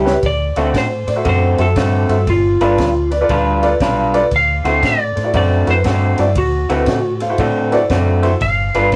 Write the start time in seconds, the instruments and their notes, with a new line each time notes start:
Already playing: fingered electric bass C#2, clean electric guitar A2 G3 C#4 E4, upright piano G4
0.04 upright piano G4 B4 C#5 E5, snare
0.23 fingered electric bass D2, electric slide guitar D5, kick, snare, ride
0.56 fingered electric bass D2, clean electric guitar D3 A3 C4 F#4, upright piano F#4 A4 C5 E5, snare, ride
0.74 fingered electric bass A2, electric slide guitar C5, kick, snare, ride
1.07 fingered electric bass A2, upright piano C5 D5, snare, ride
1.16 upright piano F#4 A4 C5 E5
1.25 fingered electric bass F#2, clean electric guitar D3 A3 C4 F#4, kick, snare, ride
1.29 electric slide guitar C5
1.58 fingered electric bass F#2, upright piano F#4 A4 C5 E5, electric slide guitar A4, snare, ride
1.76 fingered electric bass G2, clean electric guitar D3 A3 C4 F#4, kick, snare, ride
2.09 fingered electric bass G2, upright piano F#4 A4 C5 E5, snare, ride
2.27 fingered electric bass G1, electric slide guitar F4, kick, snare, ride
2.61 fingered electric bass G1, clean electric guitar G3 D4 F4 B4, upright piano F4 A4 B4 D5, snare, ride
2.78 fingered electric bass D2, kick, snare, ride
3.11 upright piano B4 D5, snare, ride
3.21 upright piano F4 A4 B4 D5
3.29 fingered electric bass D2, clean electric guitar G3 D4 F4 B4, kick, snare, ride
3.62 upright piano F4 A4 B4 D5, snare, ride
3.80 fingered electric bass B1, clean electric guitar G3 D4 F4 B4, kick, snare, ride
4.13 upright piano F4 A4 B4 D5, snare, ride
4.31 fingered electric bass D2, kick, snare, ride
4.36 electric slide guitar F5
4.64 fingered electric bass D2, clean electric guitar D3 A3 C4 F#4, upright piano E4 F#4 A4 C5, snare, ride
4.83 fingered electric bass A2, electric slide guitar D5, kick, snare, ride
5.15 fingered electric bass A2, upright piano A4 C5, snare, ride
5.24 upright piano E4 F#4 A4 D5
5.34 fingered electric bass F#2, clean electric guitar D3 A3 C4 F#4, electric slide guitar D5, kick, ride
5.66 fingered electric bass F#2, upright piano E4 F#4 A4 B4, snare, ride
5.71 electric slide guitar C5
5.84 fingered electric bass G2, clean electric guitar D3 A3 C4 F#4, kick, snare, ride
6.18 fingered electric bass G2, upright piano E4 F#4 A4 D5, snare, ride
6.35 fingered electric bass D2, electric slide guitar F#4, kick, ride
6.69 fingered electric bass D2, clean electric guitar D3 A3 C4 F#4, upright piano E4 F#4 A4 B4, snare, ride
6.86 fingered electric bass A2, kick, snare, ride
7.20 upright piano A4 C5 F5, snare, ride
7.29 upright piano E4 F#4 A4 C5
7.38 fingered electric bass A2, clean electric guitar D3 A3 C4 F#4, upright piano D5, kick, snare, ride
7.69 upright piano E4 F#4 A4 B4 D5, snare, ride
7.74 upright piano C5
7.90 fingered electric bass F#2, clean electric guitar D3 A3 C4 F#4, upright piano D5, kick, snare, ride
8.22 upright piano E4 F#4 A4 C5, snare, ride
8.41 fingered electric bass G1, electric slide guitar F5, kick, snare, ride
8.74 fingered electric bass G1, clean electric guitar G3 D4 F4 B4, upright piano D4 F4 A4 B4, snare, ride
8.92 fingered electric bass D2, kick, ride